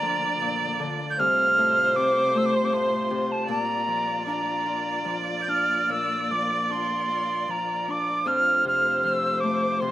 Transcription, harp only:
0, 0, Header, 1, 2, 480
1, 0, Start_track
1, 0, Tempo, 771208
1, 731, Time_signature, 3, 2, 24, 8
1, 2649, Tempo, 813008
1, 4089, Tempo, 778210
1, 6075, End_track
2, 0, Start_track
2, 0, Title_t, "Harp"
2, 0, Program_c, 0, 46
2, 0, Note_on_c, 0, 38, 55
2, 0, Note_on_c, 0, 50, 47
2, 13, Note_on_c, 0, 53, 56
2, 256, Note_on_c, 0, 46, 57
2, 280, Note_off_c, 0, 50, 0
2, 494, Note_on_c, 0, 50, 55
2, 522, Note_off_c, 0, 46, 0
2, 522, Note_off_c, 0, 53, 0
2, 743, Note_on_c, 0, 36, 67
2, 763, Note_off_c, 0, 38, 0
2, 763, Note_off_c, 0, 50, 0
2, 983, Note_on_c, 0, 45, 54
2, 1222, Note_on_c, 0, 48, 55
2, 1242, Note_off_c, 0, 45, 0
2, 1462, Note_on_c, 0, 57, 49
2, 1696, Note_on_c, 0, 45, 51
2, 1719, Note_off_c, 0, 48, 0
2, 1932, Note_on_c, 0, 48, 53
2, 1957, Note_off_c, 0, 45, 0
2, 2169, Note_on_c, 0, 46, 60
2, 2196, Note_off_c, 0, 36, 0
2, 2196, Note_off_c, 0, 48, 0
2, 2206, Note_off_c, 0, 57, 0
2, 2412, Note_on_c, 0, 53, 41
2, 2653, Note_on_c, 0, 62, 47
2, 2885, Note_on_c, 0, 65, 47
2, 3108, Note_off_c, 0, 53, 0
2, 3115, Note_on_c, 0, 53, 47
2, 3368, Note_off_c, 0, 62, 0
2, 3370, Note_on_c, 0, 62, 41
2, 3609, Note_off_c, 0, 46, 0
2, 3616, Note_on_c, 0, 46, 50
2, 3854, Note_off_c, 0, 53, 0
2, 3861, Note_on_c, 0, 53, 47
2, 4089, Note_off_c, 0, 62, 0
2, 4091, Note_on_c, 0, 62, 45
2, 4328, Note_off_c, 0, 65, 0
2, 4330, Note_on_c, 0, 65, 47
2, 4566, Note_off_c, 0, 53, 0
2, 4573, Note_on_c, 0, 53, 51
2, 4818, Note_off_c, 0, 62, 0
2, 4820, Note_on_c, 0, 62, 49
2, 5053, Note_on_c, 0, 41, 61
2, 5082, Note_off_c, 0, 46, 0
2, 5082, Note_off_c, 0, 53, 0
2, 5291, Note_on_c, 0, 48, 47
2, 5531, Note_on_c, 0, 53, 52
2, 5778, Note_on_c, 0, 57, 50
2, 5886, Note_off_c, 0, 65, 0
2, 6007, Note_off_c, 0, 48, 0
2, 6015, Note_on_c, 0, 48, 59
2, 6037, Note_off_c, 0, 53, 0
2, 6075, Note_off_c, 0, 41, 0
2, 6075, Note_off_c, 0, 48, 0
2, 6075, Note_off_c, 0, 57, 0
2, 6075, Note_off_c, 0, 62, 0
2, 6075, End_track
0, 0, End_of_file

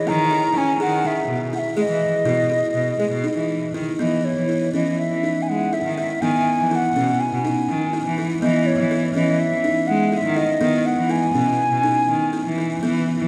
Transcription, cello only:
0, 0, Header, 1, 2, 480
1, 0, Start_track
1, 0, Tempo, 490597
1, 1730, Time_signature, 9, 3, 24, 8
1, 12992, End_track
2, 0, Start_track
2, 0, Title_t, "Cello"
2, 0, Program_c, 0, 42
2, 67, Note_on_c, 0, 51, 91
2, 458, Note_off_c, 0, 51, 0
2, 543, Note_on_c, 0, 61, 78
2, 738, Note_off_c, 0, 61, 0
2, 782, Note_on_c, 0, 51, 78
2, 1172, Note_off_c, 0, 51, 0
2, 1253, Note_on_c, 0, 47, 69
2, 1449, Note_off_c, 0, 47, 0
2, 1724, Note_on_c, 0, 56, 84
2, 1824, Note_off_c, 0, 56, 0
2, 1846, Note_on_c, 0, 52, 77
2, 2041, Note_off_c, 0, 52, 0
2, 2197, Note_on_c, 0, 47, 80
2, 2398, Note_off_c, 0, 47, 0
2, 2680, Note_on_c, 0, 47, 71
2, 2883, Note_off_c, 0, 47, 0
2, 2926, Note_on_c, 0, 56, 70
2, 3028, Note_off_c, 0, 56, 0
2, 3047, Note_on_c, 0, 47, 80
2, 3250, Note_off_c, 0, 47, 0
2, 3287, Note_on_c, 0, 52, 61
2, 3593, Note_off_c, 0, 52, 0
2, 3659, Note_on_c, 0, 51, 70
2, 3762, Note_off_c, 0, 51, 0
2, 3901, Note_on_c, 0, 52, 82
2, 4202, Note_off_c, 0, 52, 0
2, 4266, Note_on_c, 0, 52, 66
2, 4567, Note_off_c, 0, 52, 0
2, 4631, Note_on_c, 0, 52, 76
2, 4833, Note_off_c, 0, 52, 0
2, 4991, Note_on_c, 0, 52, 65
2, 5194, Note_off_c, 0, 52, 0
2, 5361, Note_on_c, 0, 56, 77
2, 5659, Note_off_c, 0, 56, 0
2, 5722, Note_on_c, 0, 51, 69
2, 5921, Note_off_c, 0, 51, 0
2, 6085, Note_on_c, 0, 51, 81
2, 6283, Note_off_c, 0, 51, 0
2, 6447, Note_on_c, 0, 52, 68
2, 6742, Note_off_c, 0, 52, 0
2, 6810, Note_on_c, 0, 47, 75
2, 7004, Note_off_c, 0, 47, 0
2, 7163, Note_on_c, 0, 47, 72
2, 7359, Note_off_c, 0, 47, 0
2, 7518, Note_on_c, 0, 51, 78
2, 7811, Note_off_c, 0, 51, 0
2, 7880, Note_on_c, 0, 52, 79
2, 8171, Note_off_c, 0, 52, 0
2, 8236, Note_on_c, 0, 52, 87
2, 8527, Note_off_c, 0, 52, 0
2, 8593, Note_on_c, 0, 52, 80
2, 8886, Note_off_c, 0, 52, 0
2, 8948, Note_on_c, 0, 52, 89
2, 9144, Note_off_c, 0, 52, 0
2, 9311, Note_on_c, 0, 52, 68
2, 9505, Note_off_c, 0, 52, 0
2, 9666, Note_on_c, 0, 56, 80
2, 9959, Note_off_c, 0, 56, 0
2, 10025, Note_on_c, 0, 51, 78
2, 10220, Note_off_c, 0, 51, 0
2, 10382, Note_on_c, 0, 51, 83
2, 10577, Note_off_c, 0, 51, 0
2, 10735, Note_on_c, 0, 52, 76
2, 11031, Note_off_c, 0, 52, 0
2, 11096, Note_on_c, 0, 47, 75
2, 11293, Note_off_c, 0, 47, 0
2, 11454, Note_on_c, 0, 47, 69
2, 11654, Note_off_c, 0, 47, 0
2, 11815, Note_on_c, 0, 51, 73
2, 12115, Note_off_c, 0, 51, 0
2, 12178, Note_on_c, 0, 52, 82
2, 12478, Note_off_c, 0, 52, 0
2, 12539, Note_on_c, 0, 52, 89
2, 12840, Note_off_c, 0, 52, 0
2, 12906, Note_on_c, 0, 52, 71
2, 12992, Note_off_c, 0, 52, 0
2, 12992, End_track
0, 0, End_of_file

